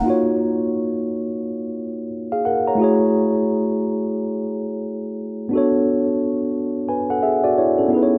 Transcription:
0, 0, Header, 1, 2, 480
1, 0, Start_track
1, 0, Tempo, 681818
1, 42, Time_signature, 4, 2, 24, 8
1, 5759, End_track
2, 0, Start_track
2, 0, Title_t, "Tine electric piano"
2, 0, Program_c, 0, 4
2, 0, Control_c, 0, 64, 127
2, 12, Note_on_c, 0, 58, 71
2, 26, Note_on_c, 0, 63, 55
2, 42, Note_on_c, 0, 65, 63
2, 52, Control_c, 0, 64, 0
2, 56, Note_on_c, 0, 66, 58
2, 70, Note_on_c, 0, 73, 72
2, 157, Control_c, 0, 64, 127
2, 1468, Note_off_c, 0, 73, 0
2, 1634, Note_on_c, 0, 77, 63
2, 1636, Note_on_c, 0, 68, 50
2, 1721, Note_off_c, 0, 77, 0
2, 1722, Note_off_c, 0, 68, 0
2, 1726, Note_on_c, 0, 78, 60
2, 1732, Note_on_c, 0, 70, 54
2, 1863, Note_off_c, 0, 78, 0
2, 1866, Note_off_c, 0, 70, 0
2, 1883, Note_on_c, 0, 82, 58
2, 1887, Note_on_c, 0, 73, 45
2, 1919, Note_off_c, 0, 58, 0
2, 1926, Note_off_c, 0, 63, 0
2, 1934, Note_off_c, 0, 65, 0
2, 1938, Note_on_c, 0, 57, 70
2, 1941, Note_off_c, 0, 66, 0
2, 1954, Note_on_c, 0, 64, 65
2, 1968, Note_on_c, 0, 66, 66
2, 1970, Control_c, 0, 64, 0
2, 1984, Note_on_c, 0, 68, 67
2, 1989, Note_off_c, 0, 73, 0
2, 1998, Note_on_c, 0, 73, 71
2, 2098, Control_c, 0, 64, 127
2, 2104, Note_off_c, 0, 82, 0
2, 3842, Note_off_c, 0, 57, 0
2, 3850, Note_off_c, 0, 64, 0
2, 3857, Note_off_c, 0, 66, 0
2, 3865, Note_off_c, 0, 68, 0
2, 3866, Note_on_c, 0, 59, 70
2, 3872, Note_off_c, 0, 73, 0
2, 3880, Note_on_c, 0, 62, 64
2, 3892, Control_c, 0, 64, 0
2, 3896, Note_on_c, 0, 66, 60
2, 3910, Note_on_c, 0, 69, 65
2, 3924, Note_on_c, 0, 73, 75
2, 4017, Control_c, 0, 64, 127
2, 4822, Note_off_c, 0, 62, 0
2, 4830, Note_off_c, 0, 66, 0
2, 4837, Note_off_c, 0, 69, 0
2, 4844, Note_off_c, 0, 73, 0
2, 4848, Note_on_c, 0, 80, 47
2, 4851, Note_on_c, 0, 71, 44
2, 4983, Note_off_c, 0, 80, 0
2, 4985, Note_off_c, 0, 71, 0
2, 5000, Note_on_c, 0, 78, 60
2, 5005, Note_on_c, 0, 69, 53
2, 5084, Note_off_c, 0, 78, 0
2, 5087, Note_off_c, 0, 69, 0
2, 5088, Note_on_c, 0, 76, 59
2, 5092, Note_on_c, 0, 68, 53
2, 5223, Note_off_c, 0, 76, 0
2, 5226, Note_off_c, 0, 68, 0
2, 5236, Note_on_c, 0, 74, 72
2, 5241, Note_on_c, 0, 66, 58
2, 5322, Note_off_c, 0, 74, 0
2, 5324, Note_off_c, 0, 66, 0
2, 5337, Note_on_c, 0, 73, 62
2, 5341, Note_on_c, 0, 64, 55
2, 5468, Note_off_c, 0, 73, 0
2, 5470, Note_off_c, 0, 64, 0
2, 5480, Note_on_c, 0, 69, 57
2, 5484, Note_on_c, 0, 61, 46
2, 5526, Note_off_c, 0, 59, 0
2, 5550, Note_on_c, 0, 59, 69
2, 5563, Note_on_c, 0, 63, 53
2, 5571, Control_c, 0, 64, 0
2, 5580, Note_on_c, 0, 64, 54
2, 5591, Note_on_c, 0, 68, 55
2, 5607, Note_on_c, 0, 71, 57
2, 5640, Note_off_c, 0, 71, 0
2, 5652, Note_on_c, 0, 73, 70
2, 5675, Control_c, 0, 64, 127
2, 5702, Note_off_c, 0, 69, 0
2, 5704, Note_off_c, 0, 61, 0
2, 5759, Note_off_c, 0, 59, 0
2, 5759, Note_off_c, 0, 63, 0
2, 5759, Note_off_c, 0, 64, 0
2, 5759, Note_off_c, 0, 68, 0
2, 5759, Note_off_c, 0, 73, 0
2, 5759, End_track
0, 0, End_of_file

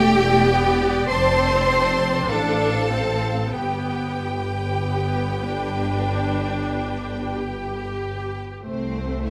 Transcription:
0, 0, Header, 1, 6, 480
1, 0, Start_track
1, 0, Tempo, 1301518
1, 401, Tempo, 1217039
1, 1361, Tempo, 1279318
1, 1362, Time_signature, 4, 2, 24, 8
1, 3529, End_track
2, 0, Start_track
2, 0, Title_t, "Violin section"
2, 0, Program_c, 0, 48
2, 0, Note_on_c, 0, 79, 110
2, 401, Note_off_c, 0, 79, 0
2, 402, Note_on_c, 0, 84, 94
2, 868, Note_off_c, 0, 84, 0
2, 877, Note_on_c, 0, 81, 85
2, 1362, Note_off_c, 0, 81, 0
2, 1364, Note_on_c, 0, 79, 77
2, 3035, Note_off_c, 0, 79, 0
2, 3290, Note_on_c, 0, 72, 64
2, 3507, Note_off_c, 0, 72, 0
2, 3529, End_track
3, 0, Start_track
3, 0, Title_t, "Violin section"
3, 0, Program_c, 1, 48
3, 0, Note_on_c, 1, 74, 69
3, 0, Note_on_c, 1, 79, 85
3, 400, Note_off_c, 1, 79, 0
3, 401, Note_on_c, 1, 81, 76
3, 635, Note_off_c, 1, 81, 0
3, 640, Note_on_c, 1, 81, 69
3, 862, Note_off_c, 1, 74, 0
3, 872, Note_off_c, 1, 81, 0
3, 877, Note_on_c, 1, 72, 62
3, 878, Note_on_c, 1, 77, 61
3, 1358, Note_on_c, 1, 79, 58
3, 1359, Note_on_c, 1, 71, 54
3, 1361, Note_off_c, 1, 72, 0
3, 1362, Note_off_c, 1, 77, 0
3, 3194, Note_off_c, 1, 79, 0
3, 3209, Note_off_c, 1, 71, 0
3, 3516, Note_on_c, 1, 72, 42
3, 3517, Note_on_c, 1, 79, 43
3, 3529, Note_off_c, 1, 72, 0
3, 3529, Note_off_c, 1, 79, 0
3, 3529, End_track
4, 0, Start_track
4, 0, Title_t, "Cello section"
4, 0, Program_c, 2, 48
4, 0, Note_on_c, 2, 67, 120
4, 386, Note_off_c, 2, 67, 0
4, 400, Note_on_c, 2, 72, 108
4, 874, Note_on_c, 2, 69, 89
4, 877, Note_off_c, 2, 72, 0
4, 1360, Note_off_c, 2, 69, 0
4, 1360, Note_on_c, 2, 67, 67
4, 3048, Note_off_c, 2, 67, 0
4, 3288, Note_on_c, 2, 60, 63
4, 3506, Note_off_c, 2, 60, 0
4, 3529, End_track
5, 0, Start_track
5, 0, Title_t, "Viola section"
5, 0, Program_c, 3, 48
5, 0, Note_on_c, 3, 57, 88
5, 160, Note_off_c, 3, 57, 0
5, 160, Note_on_c, 3, 59, 92
5, 400, Note_on_c, 3, 60, 84
5, 401, Note_off_c, 3, 59, 0
5, 877, Note_off_c, 3, 60, 0
5, 877, Note_on_c, 3, 62, 85
5, 1116, Note_on_c, 3, 60, 66
5, 1118, Note_off_c, 3, 62, 0
5, 1356, Note_off_c, 3, 60, 0
5, 1358, Note_on_c, 3, 59, 60
5, 1795, Note_off_c, 3, 59, 0
5, 1846, Note_on_c, 3, 59, 58
5, 2073, Note_off_c, 3, 59, 0
5, 2084, Note_on_c, 3, 62, 70
5, 2800, Note_on_c, 3, 67, 58
5, 2802, Note_off_c, 3, 62, 0
5, 3288, Note_off_c, 3, 67, 0
5, 3289, Note_on_c, 3, 57, 62
5, 3529, Note_off_c, 3, 57, 0
5, 3529, End_track
6, 0, Start_track
6, 0, Title_t, "Double bass section"
6, 0, Program_c, 4, 48
6, 0, Note_on_c, 4, 28, 79
6, 402, Note_on_c, 4, 29, 80
6, 403, Note_off_c, 4, 28, 0
6, 868, Note_off_c, 4, 29, 0
6, 878, Note_on_c, 4, 33, 70
6, 1352, Note_off_c, 4, 33, 0
6, 1363, Note_on_c, 4, 31, 64
6, 3211, Note_off_c, 4, 31, 0
6, 3291, Note_on_c, 4, 36, 61
6, 3529, Note_off_c, 4, 36, 0
6, 3529, End_track
0, 0, End_of_file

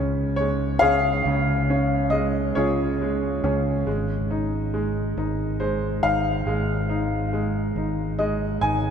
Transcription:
0, 0, Header, 1, 3, 480
1, 0, Start_track
1, 0, Tempo, 867052
1, 692, Time_signature, 6, 3, 24, 8
1, 4930, End_track
2, 0, Start_track
2, 0, Title_t, "Upright piano"
2, 0, Program_c, 0, 0
2, 0, Control_c, 0, 64, 127
2, 0, Note_on_c, 0, 49, 56
2, 0, Note_on_c, 0, 56, 49
2, 0, Note_on_c, 0, 61, 52
2, 201, Note_on_c, 0, 73, 79
2, 215, Note_off_c, 0, 56, 0
2, 224, Note_on_c, 0, 56, 52
2, 439, Note_on_c, 0, 77, 114
2, 445, Note_off_c, 0, 73, 0
2, 450, Note_on_c, 0, 68, 76
2, 454, Note_on_c, 0, 73, 69
2, 455, Note_off_c, 0, 61, 0
2, 463, Note_on_c, 0, 61, 53
2, 670, Note_off_c, 0, 49, 0
2, 699, Note_on_c, 0, 49, 56
2, 904, Note_off_c, 0, 77, 0
2, 933, Note_off_c, 0, 61, 0
2, 941, Note_on_c, 0, 61, 58
2, 1150, Note_off_c, 0, 68, 0
2, 1152, Note_off_c, 0, 73, 0
2, 1157, Note_off_c, 0, 56, 0
2, 1163, Note_on_c, 0, 75, 86
2, 1177, Note_on_c, 0, 56, 50
2, 1412, Note_off_c, 0, 61, 0
2, 1413, Note_on_c, 0, 73, 77
2, 1417, Note_off_c, 0, 75, 0
2, 1420, Note_on_c, 0, 61, 44
2, 1422, Note_on_c, 0, 68, 52
2, 1425, Note_on_c, 0, 65, 56
2, 1661, Note_off_c, 0, 56, 0
2, 1669, Note_on_c, 0, 56, 50
2, 1894, Note_off_c, 0, 61, 0
2, 1903, Note_on_c, 0, 61, 54
2, 1935, Note_off_c, 0, 73, 0
2, 2120, Note_off_c, 0, 49, 0
2, 2120, Note_off_c, 0, 68, 0
2, 2122, Note_off_c, 0, 65, 0
2, 2131, Note_off_c, 0, 56, 0
2, 2134, Note_off_c, 0, 61, 0
2, 2141, Note_on_c, 0, 56, 55
2, 2147, Control_c, 0, 64, 0
2, 2240, Control_c, 0, 64, 127
2, 2384, Note_on_c, 0, 63, 55
2, 2614, Note_off_c, 0, 56, 0
2, 2622, Note_on_c, 0, 56, 50
2, 2857, Note_off_c, 0, 63, 0
2, 2866, Note_on_c, 0, 63, 46
2, 3094, Note_off_c, 0, 56, 0
2, 3099, Note_on_c, 0, 72, 66
2, 3102, Note_on_c, 0, 56, 53
2, 3330, Note_off_c, 0, 63, 0
2, 3338, Note_on_c, 0, 77, 93
2, 3339, Note_on_c, 0, 63, 45
2, 3347, Note_off_c, 0, 72, 0
2, 3561, Note_off_c, 0, 77, 0
2, 3572, Note_off_c, 0, 56, 0
2, 3580, Note_on_c, 0, 56, 60
2, 3808, Note_off_c, 0, 63, 0
2, 3816, Note_on_c, 0, 63, 51
2, 4049, Note_off_c, 0, 56, 0
2, 4057, Note_on_c, 0, 56, 49
2, 4294, Note_off_c, 0, 63, 0
2, 4302, Note_on_c, 0, 63, 45
2, 4526, Note_off_c, 0, 56, 0
2, 4532, Note_on_c, 0, 75, 69
2, 4535, Note_on_c, 0, 56, 54
2, 4768, Note_off_c, 0, 63, 0
2, 4769, Note_on_c, 0, 80, 97
2, 4776, Note_on_c, 0, 63, 48
2, 4780, Note_off_c, 0, 75, 0
2, 4930, Note_off_c, 0, 56, 0
2, 4930, Note_off_c, 0, 63, 0
2, 4930, Note_off_c, 0, 80, 0
2, 4930, End_track
3, 0, Start_track
3, 0, Title_t, "Fingered electric bass"
3, 0, Program_c, 1, 33
3, 0, Note_on_c, 1, 37, 72
3, 429, Note_off_c, 1, 37, 0
3, 454, Note_on_c, 1, 37, 82
3, 671, Note_off_c, 1, 37, 0
3, 695, Note_on_c, 1, 37, 88
3, 1394, Note_off_c, 1, 37, 0
3, 1421, Note_on_c, 1, 37, 61
3, 1878, Note_off_c, 1, 37, 0
3, 1904, Note_on_c, 1, 37, 85
3, 2120, Note_off_c, 1, 37, 0
3, 2142, Note_on_c, 1, 32, 77
3, 2840, Note_off_c, 1, 32, 0
3, 2864, Note_on_c, 1, 32, 78
3, 3320, Note_off_c, 1, 32, 0
3, 3342, Note_on_c, 1, 32, 76
3, 3558, Note_off_c, 1, 32, 0
3, 3578, Note_on_c, 1, 32, 81
3, 4273, Note_off_c, 1, 32, 0
3, 4294, Note_on_c, 1, 32, 64
3, 4751, Note_off_c, 1, 32, 0
3, 4768, Note_on_c, 1, 32, 83
3, 4930, Note_off_c, 1, 32, 0
3, 4930, End_track
0, 0, End_of_file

